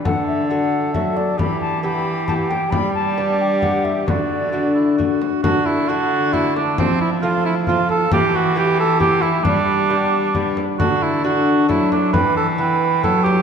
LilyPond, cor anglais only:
\new Staff \with { instrumentName = "Cor anglais" } { \time 3/4 \key d \mixolydian \tempo 4 = 134 a'4 a'2 | g'4 g'2 | g'2. | fis'4 fis'8 e'8 fis'4 |
fis'8 e'8 fis'4 e'8 d'8 | c'8 e'8 f'8 e'8 f'8 a'8 | g'8 fis'8 g'8 a'8 g'8 e'8 | d'2~ d'8 r8 |
fis'8 e'8 fis'4 e'8 d'8 | b'8 a'8 b'4 a'8 g'8 | }